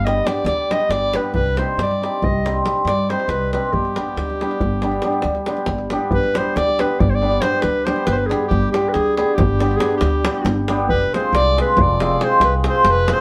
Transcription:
Already playing: upright bass G1
0.05 hammered dulcimer G3 B3 D4 G4, clarinet D#5, davul high
0.25 hammered dulcimer G3 B3 D4 G4, clarinet D5, davul high
0.45 upright bass D2, clarinet D5, davul high
0.70 hammered dulcimer G3 B3 D4 G4, clarinet D#5, davul high
0.80 davul high
0.89 upright bass G1, clarinet D5, davul high
1.13 hammered dulcimer G3 B3 D4 G4, clarinet B4, davul high
1.34 upright bass C2, clarinet B4, davul low
1.46 davul high
1.57 hammered dulcimer G3 C4 D#4 G4, clarinet C5, davul high
1.77 upright bass G2, davul high
1.82 clarinet D5
1.91 davul high
2.02 hammered dulcimer G3 C4 D#4 G4, davul high
2.22 upright bass C2, clarinet D#5, davul low
2.45 hammered dulcimer G3 C4 D#4 G4, davul high
2.65 hammered dulcimer G3 C4 D#4 G4, davul high
2.85 upright bass G2, clarinet D5, davul high
3.09 hammered dulcimer G3 C4 D#4 G4, clarinet C5, davul high
3.20 davul high
3.28 upright bass C2, clarinet B4, davul high
3.53 hammered dulcimer G3 C4 D#4 G4, clarinet B4, davul high
3.73 upright bass G1, clarinet G4, davul low
3.85 davul high
3.96 hammered dulcimer G3 B3 D4 G4, davul high
4.16 upright bass D2, davul high
4.30 davul high
4.41 hammered dulcimer G3 B3 D4 G4, davul high
4.51 davul high
4.60 upright bass G1, davul low
4.82 hammered dulcimer G3 B3 D4 G4, davul high
4.92 davul high
5.02 hammered dulcimer G3 B3 D4 G4, davul high
5.12 davul high
5.22 upright bass D2, davul high
5.35 davul high
5.46 hammered dulcimer G3 B3 D4 G4, davul high
5.57 davul high
5.66 upright bass G1, davul high, davul low
5.78 davul high
5.90 hammered dulcimer G3 B3 D4 G4, davul high
6.11 upright bass G1, clarinet B4, davul low
6.23 davul high
6.34 hammered dulcimer G3 B3 D4 G4, clarinet C5, davul high
6.56 upright bass D2, clarinet D5, davul high
6.68 davul high
6.79 hammered dulcimer G3 B3 D4 G4, clarinet B4, davul high
7.00 upright bass G1, clarinet D5, davul low
7.10 clarinet C5
7.15 clarinet D5
7.22 hammered dulcimer G3 B3 D4 G4
7.32 davul high
7.41 hammered dulcimer G3 B3 D4 G4, clarinet C5, davul high
7.61 upright bass D2, clarinet B4, davul high
7.85 hammered dulcimer G3 B3 D4 G4, clarinet C5, davul high
7.96 davul high
8.06 upright bass G1, clarinet B4, davul high
8.12 clarinet B4 C5
8.26 hammered dulcimer G3 B3, clarinet G#4
8.30 hammered dulcimer D4 G4, davul high
8.48 upright bass G1, clarinet G4, davul low
8.63 davul high
8.72 hammered dulcimer G3 B3 D4 G4, clarinet G4, davul high
8.89 clarinet G#4 B4
8.94 upright bass D2, davul high
9.06 davul high
9.16 hammered dulcimer G3 B3 D4 G4, clarinet G#4, davul high
9.35 upright bass G1, clarinet G4
9.39 davul low
9.59 hammered dulcimer G3 B3 D4 G4, davul high
9.71 davul high
9.76 hammered dulcimer G3 B3 D4, clarinet G#4
9.80 hammered dulcimer G4, davul high
9.91 davul high
9.97 upright bass D2, clarinet G4, davul high
10.25 hammered dulcimer G3 B3 D4 G4, davul high
10.35 davul high
10.45 upright bass G1, davul high
10.68 hammered dulcimer G3 B3 D4 G4, davul high
10.89 upright bass F1, clarinet B4, davul low
11.02 davul high
11.13 hammered dulcimer G#3 C4 F4 G#4, clarinet C5, davul high
11.33 upright bass C2, clarinet D5, davul high
11.46 davul high
11.56 hammered dulcimer G#3 C4 F4 G#4, davul high
11.61 clarinet B4
11.77 upright bass F1, davul low
11.81 clarinet D5
12.00 hammered dulcimer G#3 C4 F4 G#4, davul high
12.11 davul high
12.20 hammered dulcimer G#3 C4 F4 G#4, davul high
12.24 clarinet C5
12.31 davul high
12.40 upright bass C2, davul high
12.44 clarinet B4
12.64 hammered dulcimer G#3 C4 F4 G#4, davul high
12.69 clarinet C5
12.75 davul high
12.84 upright bass F1, davul high
12.90 clarinet B4
13.07 hammered dulcimer G#3 C4 F4 G#4, davul high
13.13 clarinet C5

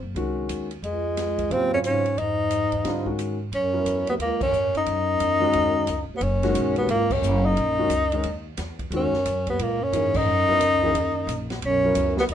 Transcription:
0.02 upright bass F#1
0.15 upright bass C2, grand piano D#3 G#3 C#4 F#4, ride
0.49 upright bass D#2, hi-hat pedal, ride
0.71 ride
0.82 bass clarinet C#2, upright bass F2, tenor saxophone G#3, ride
1.17 snare, hi-hat pedal, ride
1.38 kick, ride
1.50 bass clarinet D#2, upright bass G#2, grand piano C#3 F#3 C4 F4, tenor saxophone C4, ride
1.74 bass clarinet F2, tenor saxophone C#4
1.84 bass clarinet G#2, tenor saxophone C#4, hi-hat pedal, ride
2.06 ride
2.17 upright bass F2, bass clarinet G#2, tenor saxophone D#4, ride
2.51 hi-hat pedal, ride
2.72 upright bass E2, ride
2.84 upright bass G#2, grand piano D3 G3 C4 F4, snare, ride
3.06 grand piano D#3 G#3 C#4 F#4, kick
3.19 hi-hat pedal, ride
3.52 upright bass F#2, bass clarinet F#2, tenor saxophone C#4, ride
3.73 grand piano F#3 B3 E4 A#4
3.85 upright bass E2, hi-hat pedal, ride
4.07 bass clarinet D#2, tenor saxophone B3, ride
4.19 bass clarinet C#2, upright bass D#2, tenor saxophone A#3, ride
4.41 bass clarinet F#2, tenor saxophone C#4, muted upright bass stroke, kick, crash
4.52 upright bass G#2, hi-hat pedal
4.74 bass clarinet F#2, tenor saxophone D#4, muted upright bass stroke, ride
4.86 upright bass F#2, ride
5.20 upright bass E2, hi-hat pedal, ride
5.40 grand piano D#3 G#3 C#4 F#4
5.53 upright bass D#2, ride
5.87 upright bass C#2, hi-hat pedal, ride
6.09 muted upright bass stroke
6.14 bass clarinet D#2, tenor saxophone B3
6.21 upright bass F#1, bass clarinet F#2, tenor saxophone C#4, ride
6.43 grand piano D#3 G#3 C#4 F#4, snare, ride
6.55 upright bass A#1, hi-hat pedal, ride
6.76 bass clarinet D#2, tenor saxophone B3, ride
6.88 upright bass G#1, bass clarinet C#2, tenor saxophone A#3, ride
7.10 bass clarinet F#2, tenor saxophone C#4, kick, crash
7.22 upright bass F#1, hi-hat pedal
7.45 bass clarinet F#2, tenor saxophone D#4
7.57 upright bass A#1, ride
7.78 grand piano D#3 G#3 C#4 F#4
7.90 upright bass C#2, hi-hat pedal, ride
8.12 grand piano D#3 G#3 C#4 D#4, ride
8.23 upright bass D#2, ride
8.57 upright bass E2, snare, hi-hat pedal, ride
8.79 kick, ride
8.91 upright bass D#2, bass clarinet F#2, grand piano D#3 G#3 C#4 F#4, ride
8.96 tenor saxophone C#4
9.13 muted upright bass stroke, snare
9.25 upright bass F#2, hi-hat pedal, ride
9.47 bass clarinet D#2, tenor saxophone B3, kick, ride
9.59 bass clarinet C#2, upright bass A#2, tenor saxophone A#3, ride
9.81 bass clarinet F#2, tenor saxophone C#4
9.92 upright bass G#2, grand piano E3 A#3 D#4 G#4, hi-hat pedal, ride
10.14 bass clarinet F#2, tenor saxophone D#4, kick, crash
10.27 upright bass F#2
10.48 grand piano F#3 B3 E4 A#4, muted upright bass stroke
10.59 upright bass C#2, hi-hat pedal, ride
10.83 grand piano E3 A#3 D#4 G#4
10.93 upright bass D#2, ride
11.27 upright bass A#1, hi-hat pedal, ride
11.50 snare, ride
11.62 upright bass B1, bass clarinet F#2, tenor saxophone C#4, ride
11.84 grand piano F#3 B3 E4 A#4
11.95 upright bass C#2, hi-hat pedal, ride
12.17 bass clarinet D#2, tenor saxophone B3, snare
12.28 upright bass D#2, bass clarinet F#2, ride

